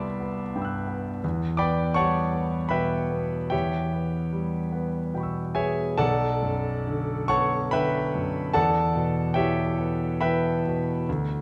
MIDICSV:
0, 0, Header, 1, 2, 480
1, 0, Start_track
1, 0, Tempo, 691244
1, 855, Time_signature, 3, 2, 24, 8
1, 855, Tempo, 738916
1, 1815, Tempo, 813008
1, 3255, Tempo, 862069
1, 4695, Tempo, 813008
1, 5655, Tempo, 849858
1, 6815, End_track
2, 0, Start_track
2, 0, Title_t, "Grand piano"
2, 0, Program_c, 0, 0
2, 0, Control_c, 0, 64, 127
2, 0, Note_on_c, 0, 36, 48
2, 0, Note_on_c, 0, 55, 42
2, 0, Note_on_c, 0, 59, 45
2, 0, Note_on_c, 0, 74, 74
2, 0, Note_on_c, 0, 76, 70
2, 0, Note_on_c, 0, 79, 68
2, 0, Note_on_c, 0, 81, 70
2, 0, Note_on_c, 0, 83, 70
2, 0, Note_on_c, 0, 84, 68
2, 0, Note_on_c, 0, 86, 90
2, 0, Note_on_c, 0, 88, 92
2, 138, Note_off_c, 0, 59, 0
2, 138, Note_on_c, 0, 59, 41
2, 277, Note_off_c, 0, 55, 0
2, 384, Note_on_c, 0, 43, 41
2, 388, Note_off_c, 0, 79, 0
2, 388, Note_on_c, 0, 79, 35
2, 404, Note_off_c, 0, 83, 0
2, 404, Note_on_c, 0, 83, 33
2, 417, Note_off_c, 0, 88, 0
2, 428, Note_on_c, 0, 88, 33
2, 449, Note_on_c, 0, 90, 36
2, 515, Note_off_c, 0, 59, 0
2, 607, Note_on_c, 0, 59, 43
2, 761, Note_off_c, 0, 43, 0
2, 821, Note_off_c, 0, 84, 0
2, 822, Note_off_c, 0, 81, 0
2, 823, Note_off_c, 0, 76, 0
2, 827, Note_off_c, 0, 36, 0
2, 836, Note_off_c, 0, 79, 0
2, 844, Note_off_c, 0, 83, 0
2, 854, Note_off_c, 0, 59, 0
2, 856, Note_off_c, 0, 88, 0
2, 861, Note_on_c, 0, 40, 53
2, 865, Note_off_c, 0, 90, 0
2, 866, Control_c, 0, 64, 0
2, 867, Note_off_c, 0, 74, 0
2, 872, Note_off_c, 0, 86, 0
2, 968, Control_c, 0, 64, 127
2, 1077, Note_on_c, 0, 86, 86
2, 1085, Note_on_c, 0, 74, 75
2, 1087, Note_on_c, 0, 83, 70
2, 1088, Note_on_c, 0, 79, 72
2, 1095, Note_on_c, 0, 59, 45
2, 1309, Note_off_c, 0, 74, 0
2, 1311, Note_off_c, 0, 79, 0
2, 1311, Note_off_c, 0, 83, 0
2, 1318, Note_on_c, 0, 85, 90
2, 1323, Note_off_c, 0, 86, 0
2, 1328, Note_on_c, 0, 73, 65
2, 1328, Note_on_c, 0, 78, 67
2, 1328, Note_on_c, 0, 81, 67
2, 1339, Note_on_c, 0, 55, 38
2, 1475, Note_off_c, 0, 59, 0
2, 1567, Note_on_c, 0, 59, 36
2, 1720, Note_off_c, 0, 55, 0
2, 1787, Note_off_c, 0, 73, 0
2, 1787, Note_off_c, 0, 78, 0
2, 1787, Note_off_c, 0, 81, 0
2, 1801, Note_on_c, 0, 83, 76
2, 1808, Note_off_c, 0, 85, 0
2, 1812, Note_on_c, 0, 71, 62
2, 1812, Note_on_c, 0, 76, 63
2, 1816, Note_on_c, 0, 47, 38
2, 1816, Note_on_c, 0, 79, 64
2, 1952, Note_off_c, 0, 59, 0
2, 2046, Note_on_c, 0, 59, 39
2, 2197, Note_off_c, 0, 47, 0
2, 2272, Note_off_c, 0, 71, 0
2, 2272, Note_off_c, 0, 76, 0
2, 2273, Note_off_c, 0, 79, 0
2, 2276, Note_off_c, 0, 40, 0
2, 2282, Note_on_c, 0, 79, 74
2, 2289, Note_on_c, 0, 76, 49
2, 2291, Note_off_c, 0, 83, 0
2, 2292, Note_on_c, 0, 67, 53
2, 2292, Note_on_c, 0, 73, 50
2, 2295, Note_off_c, 0, 59, 0
2, 2297, Note_on_c, 0, 40, 45
2, 2308, Control_c, 0, 64, 0
2, 2398, Control_c, 0, 64, 127
2, 2535, Note_on_c, 0, 59, 38
2, 2770, Note_on_c, 0, 55, 36
2, 2917, Note_off_c, 0, 59, 0
2, 3005, Note_on_c, 0, 59, 37
2, 3152, Note_off_c, 0, 55, 0
2, 3246, Note_off_c, 0, 79, 0
2, 3251, Note_on_c, 0, 47, 34
2, 3255, Note_on_c, 0, 79, 27
2, 3270, Note_on_c, 0, 83, 30
2, 3284, Note_on_c, 0, 85, 29
2, 3301, Note_on_c, 0, 88, 30
2, 3388, Note_off_c, 0, 59, 0
2, 3462, Note_off_c, 0, 76, 0
2, 3464, Note_off_c, 0, 67, 0
2, 3464, Note_off_c, 0, 73, 0
2, 3477, Note_on_c, 0, 80, 73
2, 3479, Note_on_c, 0, 68, 55
2, 3480, Note_on_c, 0, 76, 55
2, 3482, Note_on_c, 0, 73, 60
2, 3486, Note_on_c, 0, 59, 36
2, 3634, Note_off_c, 0, 47, 0
2, 3712, Note_off_c, 0, 40, 0
2, 3712, Note_off_c, 0, 68, 0
2, 3712, Note_off_c, 0, 76, 0
2, 3712, Note_off_c, 0, 79, 0
2, 3713, Note_off_c, 0, 73, 0
2, 3716, Note_on_c, 0, 81, 95
2, 3719, Note_on_c, 0, 69, 67
2, 3720, Note_off_c, 0, 83, 0
2, 3721, Note_on_c, 0, 74, 76
2, 3722, Note_on_c, 0, 78, 70
2, 3724, Note_on_c, 0, 35, 57
2, 3727, Note_off_c, 0, 85, 0
2, 3728, Note_off_c, 0, 80, 0
2, 3733, Note_off_c, 0, 59, 0
2, 3735, Note_off_c, 0, 88, 0
2, 3746, Control_c, 0, 64, 0
2, 3855, Control_c, 0, 64, 127
2, 3965, Note_on_c, 0, 42, 44
2, 4214, Note_on_c, 0, 50, 44
2, 4352, Note_off_c, 0, 42, 0
2, 4425, Note_off_c, 0, 69, 0
2, 4426, Note_off_c, 0, 74, 0
2, 4426, Note_off_c, 0, 78, 0
2, 4443, Note_off_c, 0, 81, 0
2, 4443, Note_on_c, 0, 85, 95
2, 4449, Note_on_c, 0, 78, 67
2, 4451, Note_on_c, 0, 73, 70
2, 4451, Note_on_c, 0, 81, 71
2, 4457, Note_on_c, 0, 59, 43
2, 4598, Note_off_c, 0, 50, 0
2, 4674, Note_off_c, 0, 73, 0
2, 4674, Note_off_c, 0, 78, 0
2, 4675, Note_off_c, 0, 81, 0
2, 4683, Note_on_c, 0, 83, 90
2, 4687, Note_off_c, 0, 85, 0
2, 4691, Note_on_c, 0, 79, 68
2, 4692, Note_on_c, 0, 71, 70
2, 4693, Note_on_c, 0, 76, 74
2, 4697, Note_on_c, 0, 50, 41
2, 4843, Note_off_c, 0, 59, 0
2, 4941, Note_on_c, 0, 42, 40
2, 5085, Note_off_c, 0, 50, 0
2, 5150, Note_off_c, 0, 35, 0
2, 5154, Note_off_c, 0, 79, 0
2, 5155, Note_off_c, 0, 71, 0
2, 5155, Note_off_c, 0, 76, 0
2, 5168, Note_on_c, 0, 81, 91
2, 5171, Note_on_c, 0, 69, 70
2, 5172, Note_on_c, 0, 78, 69
2, 5173, Note_off_c, 0, 83, 0
2, 5174, Note_on_c, 0, 74, 67
2, 5176, Note_on_c, 0, 40, 53
2, 5180, Note_off_c, 0, 42, 0
2, 5189, Control_c, 0, 64, 0
2, 5275, Control_c, 0, 64, 127
2, 5416, Note_on_c, 0, 47, 42
2, 5625, Note_off_c, 0, 69, 0
2, 5625, Note_off_c, 0, 78, 0
2, 5626, Note_off_c, 0, 74, 0
2, 5643, Note_on_c, 0, 79, 82
2, 5647, Note_off_c, 0, 81, 0
2, 5651, Note_on_c, 0, 73, 59
2, 5652, Note_on_c, 0, 76, 65
2, 5655, Note_on_c, 0, 67, 62
2, 5659, Note_on_c, 0, 52, 43
2, 5793, Note_off_c, 0, 47, 0
2, 5893, Note_on_c, 0, 59, 43
2, 6039, Note_off_c, 0, 52, 0
2, 6111, Note_off_c, 0, 73, 0
2, 6112, Note_off_c, 0, 76, 0
2, 6113, Note_off_c, 0, 67, 0
2, 6128, Note_off_c, 0, 79, 0
2, 6132, Note_on_c, 0, 83, 81
2, 6135, Note_on_c, 0, 76, 63
2, 6137, Note_on_c, 0, 79, 68
2, 6140, Note_on_c, 0, 52, 40
2, 6140, Note_on_c, 0, 71, 60
2, 6286, Note_off_c, 0, 59, 0
2, 6364, Note_off_c, 0, 76, 0
2, 6365, Note_off_c, 0, 79, 0
2, 6367, Note_off_c, 0, 71, 0
2, 6380, Note_off_c, 0, 83, 0
2, 6396, Note_on_c, 0, 47, 43
2, 6528, Note_off_c, 0, 52, 0
2, 6596, Note_off_c, 0, 40, 0
2, 6627, Note_off_c, 0, 47, 0
2, 6631, Control_c, 0, 64, 0
2, 6633, Note_on_c, 0, 38, 53
2, 6709, Control_c, 0, 64, 127
2, 6815, Note_off_c, 0, 38, 0
2, 6815, End_track
0, 0, End_of_file